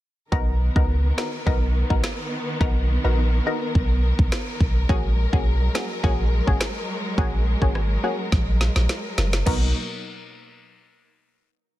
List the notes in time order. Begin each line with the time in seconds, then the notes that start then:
0.32 B1 D#3 B3 D#4 F#4 A#4, kick
0.76 C#2 B3 D#4 F#4 A#4, kick
1.18 B3 D#4 F#4 A#4, cross-stick, snare
1.46 B1 B3 D#4 F#4 A#4, kick
1.90 A#1 B3 D#4 F#4 A#4, kick
2.04 cross-stick, snare
2.60 B1 B3 D#4 F#4 A#4, kick
3.04 A#1 B3 D#4 F#4 A#4
3.46 B3 D#4 F#4 A#4
3.75 B1, kick
4.19 B1, kick
4.32 cross-stick, snare
4.60 B1, kick
4.89 A#1 F#3 G#3 A#3 C#4 F#4 G#4, kick
5.33 B1 A#3 C#4 F#4 G#4, kick
5.75 A#3 C#4 F#4 G#4, cross-stick, snare
6.03 A#1 A#3 C#4 F#4 G#4, kick
6.47 G#1 A#3 C#4 F#4 G#4, kick
6.60 cross-stick, snare
7.18 A#1 A#3 C#4 F#4 G#4, kick
7.61 G#1 A#3 C#4 F#4 G#4, kick
7.75 cross-stick
8.03 A#3 C#4 F#4 G#4
8.32 A#1, kick, snare
8.61 snare
8.76 A#1, snare
8.89 snare
9.18 F#1, snare
9.33 snare
9.46 B1 B2 F#3 A#3 B3 D#4 F#4 A#4, kick, crash